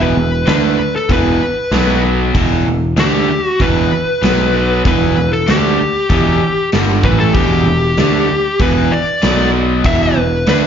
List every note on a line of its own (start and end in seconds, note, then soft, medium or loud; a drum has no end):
0.00 0.13 E1 medium
0.00 0.14 E2 medium
0.00 0.14 B2 medium
0.00 0.14 E3 medium
0.00 0.47 B4 medium
0.15 0.45 E1 medium
0.15 0.40 E2 medium
0.15 0.41 B2 medium
0.46 0.76 D2 medium
0.46 0.77 D3 medium
0.46 0.77 A3 medium
0.46 0.77 D4 medium
0.46 0.96 B4 medium
0.46 snare loud
0.46 open hi-hat soft
0.78 muted overdriven electric guitar stroke medium
0.78 muted picked electric bass stroke soft
0.96 1.11 A4 medium
1.09 1.38 E1 medium
1.09 1.40 E2 medium
1.09 1.40 B2 medium
1.09 1.40 E3 loud
1.09 2.01 B4 medium
1.09 kick medium
1.09 open hi-hat soft
1.71 2.30 B1 medium
1.71 2.34 B2 medium
1.71 2.34 F#3 medium
1.71 2.34 B3 loud
1.71 snare loud
1.71 open hi-hat soft
2.35 2.64 E1 medium
2.35 2.65 E2 medium
2.35 2.65 B2 medium
2.35 2.65 E3 medium
2.35 kick medium
2.35 open hi-hat soft
2.65 2.94 E1 medium
2.65 2.91 E2 medium
2.65 2.92 B2 medium
2.96 3.26 D2 medium
2.96 3.27 D3 medium
2.96 3.28 A3 medium
2.96 3.28 D4 medium
2.96 3.45 G4 medium
2.96 snare loud
2.96 open hi-hat soft
3.29 muted picked electric bass stroke soft
3.29 muted overdriven electric guitar stroke medium
3.45 3.63 F#4 medium
3.60 3.89 E1 medium
3.60 3.90 E2 medium
3.60 3.90 B2 loud
3.60 3.90 E3 loud
3.60 4.82 B4 loud
3.60 kick medium
3.60 open hi-hat soft
4.22 4.81 B1 medium
4.22 4.84 B2 medium
4.22 4.84 F#3 medium
4.22 4.85 B3 medium
4.22 snare medium
4.22 open hi-hat soft
4.85 5.14 E1 medium
4.85 5.15 E2 medium
4.85 5.15 B2 medium
4.85 5.16 E3 medium
4.85 5.32 B4 loud
4.85 kick medium
4.85 open hi-hat soft
5.16 5.46 E1 medium
5.16 5.41 E2 medium
5.16 5.41 B2 medium
5.33 5.48 A4 medium
5.47 5.77 D2 medium
5.47 5.77 D3 medium
5.47 5.78 A3 medium
5.47 5.78 D4 medium
5.47 6.69 G4 medium
5.47 snare loud
5.47 open hi-hat soft
5.79 muted overdriven electric guitar stroke soft
5.79 muted picked electric bass stroke soft
6.09 6.39 E1 medium
6.09 6.40 E2 medium
6.09 6.40 B2 medium
6.09 6.40 E3 medium
6.09 kick medium
6.09 open hi-hat soft
6.72 7.02 G1 medium
6.72 7.03 G2 medium
6.72 7.03 D3 medium
6.72 7.03 G3 medium
6.72 snare medium
6.72 open hi-hat soft
7.04 7.33 A1 medium
7.04 7.34 A2 medium
7.04 7.34 E3 medium
7.04 7.35 A3 medium
7.04 7.19 B4 medium
7.04 kick medium
7.20 7.34 A4 medium
7.34 7.64 E1 medium
7.34 7.65 E2 medium
7.34 7.66 B2 medium
7.34 7.66 E3 medium
7.34 8.61 G4 medium
7.34 kick medium
7.34 open hi-hat soft
7.65 7.95 E1 medium
7.65 7.91 E2 medium
7.65 7.92 B2 medium
7.97 8.26 D2 medium
7.97 8.28 D3 medium
7.97 8.29 A3 medium
7.97 8.29 D4 medium
7.97 snare loud
7.97 open hi-hat soft
8.29 muted picked electric bass stroke soft
8.29 muted overdriven electric guitar stroke soft
8.60 8.89 E1 medium
8.60 8.90 E2 medium
8.60 8.90 B2 medium
8.60 8.91 E3 medium
8.60 8.93 B4 medium
8.60 kick medium
8.60 open hi-hat soft
8.92 9.50 D5 medium
9.22 9.81 B1 medium
9.22 9.84 B2 medium
9.22 9.84 F#3 medium
9.22 9.84 B3 medium
9.22 snare medium
9.22 open hi-hat soft
9.84 10.13 E1 medium
9.84 10.15 E2 medium
9.84 10.15 B2 medium
9.84 10.16 E3 loud
9.84 10.01 E5 loud
9.84 kick medium
9.84 open hi-hat soft
10.03 10.48 B4 medium
10.16 10.45 E1 medium
10.16 10.41 E2 medium
10.16 10.41 B2 medium
10.47 10.67 D2 medium
10.47 10.67 D3 medium
10.47 10.67 A3 medium
10.47 10.67 D4 medium
10.47 10.67 B4 medium
10.47 snare loud
10.47 open hi-hat soft